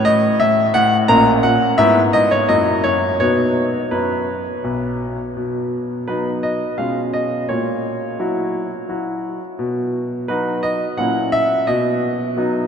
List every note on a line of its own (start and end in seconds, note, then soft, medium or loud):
0.00 1.05 F#3 soft
0.00 1.05 C#4 soft
0.05 0.39 A2 medium
0.05 0.40 D#5 loud
0.40 0.73 A2 medium
0.40 0.75 E5 loud
0.74 1.08 A2 medium
0.74 0.95 F#5 loud
1.08 1.43 A#1 medium
1.08 1.42 A#2 medium
1.08 1.74 A#3 medium
1.08 1.74 C#4 medium
1.08 1.29 A#5 loud
1.43 1.78 A#2 medium
1.43 1.75 F#5 medium
1.78 2.12 G#2 medium
1.78 2.45 B3 medium
1.78 2.45 E4 medium
1.78 1.99 E5 loud
2.13 2.48 G#2 medium
2.13 2.31 D#5 loud
2.31 2.49 C#5 medium
2.49 2.83 F#2 medium
2.49 3.16 A#3 soft
2.49 3.16 E4 soft
2.49 2.81 D#5 medium
2.84 3.19 F#2 medium
2.84 3.16 C#5 medium
3.20 3.71 B2 medium
3.20 3.78 B3 soft
3.20 3.78 D#4 soft
3.20 3.63 C#5 medium
3.91 4.42 F#2 medium
3.91 4.96 B4 medium
4.64 5.15 B1 medium
5.37 6.06 B2 soft
6.08 6.59 F#3 soft
6.08 6.59 B3 soft
6.08 6.60 D#4 soft
6.08 6.29 B4 medium
6.43 6.75 D#5 medium
6.78 7.47 B2 soft
6.78 7.45 G#3 soft
6.78 7.46 C#4 soft
6.78 7.46 F4 soft
6.78 6.99 F5 medium
7.13 7.45 D#5 medium
7.49 8.17 A#2 medium
7.49 9.19 C#5 medium
8.19 8.70 F#3 soft
8.19 8.70 E4 soft
8.19 8.70 F#4 soft
8.89 9.39 F#3 soft
8.89 9.39 E4 soft
8.89 9.40 F#4 soft
9.59 10.27 B2 medium
10.28 10.79 F#3 soft
10.28 10.79 D#4 soft
10.28 10.80 F#4 soft
10.28 10.63 B4 medium
10.63 10.84 D#5 medium
10.98 11.65 A#2 medium
10.98 11.64 F#3 soft
10.98 11.64 C#4 soft
10.98 11.64 E4 soft
10.98 11.29 F#5 medium
11.32 11.67 E5 medium
11.67 12.35 B2 medium
11.67 12.67 D#5 medium
12.37 12.67 F#3 soft
12.37 12.67 B3 soft
12.37 12.67 D#4 soft